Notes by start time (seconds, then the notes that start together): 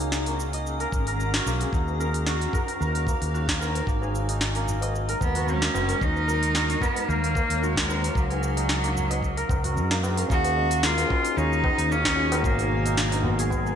Already playing: C#2 A#3 C#4 D#4 F#4 G#4 A#4 C#5 F#5 G#5
0.00 D#4, cabasa
0.12 snare, cabasa
0.26 A#3, open hi-hat, cabasa
0.40 cabasa
0.53 D#5, open hi-hat, cabasa
0.67 cabasa
0.80 A#4, open hi-hat, cabasa
0.92 G#1, kick, cabasa
1.07 A#4, open hi-hat, cabasa
1.20 cabasa
1.34 F#4, snare, cabasa
1.46 B1 A#3, cabasa
1.61 G#4, open hi-hat, cabasa
1.73 D#2 D#4, kick, cabasa
1.88 tabla tin, cabasa
2.00 A#4 C#5 F5, cabasa
2.14 open hi-hat, cabasa
2.27 F#4, snare, cabasa
2.41 open hi-hat, cabasa
2.53 A#4, kick, tabla ge, cabasa
2.59 G#5
2.67 open hi-hat, tabla na, tabla tin, cabasa
2.80 D#2 A#4, cabasa
2.95 open hi-hat, cabasa
3.06 A#3, kick, tabla tin, cabasa
3.22 D#2, open hi-hat, cabasa
3.34 F#4, cabasa
3.48 kick, snare, cabasa
3.59 A#4, tabla na, cabasa
3.75 open hi-hat, tabla tin, cabasa
3.87 G#1 G#3 A#3, kick, cabasa
3.94 F#4
4.01 G#4, tabla na, tabla tin, cabasa
4.15 A#4, cabasa
4.29 D#4, open hi-hat, cabasa
4.41 snare, cabasa
4.55 A#3, open hi-hat, cabasa
4.67 tabla ge, cabasa
4.81 D#5, open hi-hat, tabla na, tabla tin, cabasa
4.95 cabasa
5.09 A#4, open hi-hat, cabasa
5.21 D#2 B3, kick, tabla na, tabla ge, cabasa
5.35 F#4, open hi-hat, tabla tin, tabla ge, cabasa
5.48 C#4, cabasa
5.62 A#3, snare, cabasa
5.74 F#1, tabla na, cabasa
5.89 A#4, open hi-hat, cabasa
6.01 D#2 D#4, kick, cabasa
6.16 tabla tin, cabasa
6.27 A#4 C#5, cabasa
6.43 open hi-hat, cabasa
6.55 F#4, snare, cabasa
6.59 F5
6.70 open hi-hat, cabasa
6.81 B3 A#4, kick, tabla ge, cabasa
6.96 G#5, open hi-hat, tabla na, tabla tin, cabasa
7.08 D#2 A#3 A#4, cabasa
7.24 open hi-hat, cabasa
7.35 A#3, kick, tabla tin, cabasa
7.50 D#2, open hi-hat, cabasa
7.62 G#3 F#4, cabasa
7.76 kick, snare, cabasa
7.88 A#4, tabla na, cabasa
8.03 open hi-hat, tabla tin, cabasa
8.15 C#2 F#3 A#3 C#4, kick, cabasa
8.30 G#4, open hi-hat, tabla na, tabla tin, cabasa
8.40 G#4, cabasa
8.57 D#4, open hi-hat, cabasa
8.69 snare, cabasa
8.84 A#3, open hi-hat, cabasa
8.96 tabla ge, cabasa
9.10 D#5, open hi-hat, tabla na, tabla tin, cabasa
9.23 kick, cabasa
9.37 A#4, open hi-hat, cabasa
9.49 C#2, kick, tabla na, tabla ge, cabasa
9.63 F#4, open hi-hat, tabla tin, tabla ge, cabasa
9.76 F#2, cabasa
9.91 A#3, snare, cabasa
10.03 tabla na, cabasa
10.17 A#4, open hi-hat, cabasa
10.28 D#2 C#4 D#4 F#4 G#4 F5, kick, cabasa
10.44 open hi-hat, tabla tin, cabasa
10.51 C#5 F5
10.57 D#5
10.71 open hi-hat, cabasa
10.83 A#3 F4, snare, cabasa
10.98 open hi-hat, tabla na, cabasa
11.08 C#4 D#4 F4 F#4, kick, tabla na
11.12 G#4
11.25 G#5, open hi-hat, cabasa
11.37 D#2 C#4 D#4, cabasa
11.53 cabasa
11.64 D#5, kick, tabla na
11.78 D#2, open hi-hat, cabasa
11.91 A#3 C#4, cabasa
12.05 D#4, kick, snare, tabla na, cabasa
12.16 C#4 F4 F#4 G#4
12.32 A#4, open hi-hat, tabla na, tabla tin, cabasa
12.42 G#1 B2 G#3 A#3 F#4, kick, cabasa
12.57 F#3 G#4 A#4, open hi-hat, tabla tin, cabasa
12.86 D#4, open hi-hat, cabasa
12.97 snare, cabasa
13.12 D#4, open hi-hat, tabla na, cabasa
13.22 A#3 B3, tabla na, tabla ge
13.26 F#4
13.39 G#4, open hi-hat, cabasa
13.50 kick, tabla na, cabasa
13.66 G#4, tabla tin, cabasa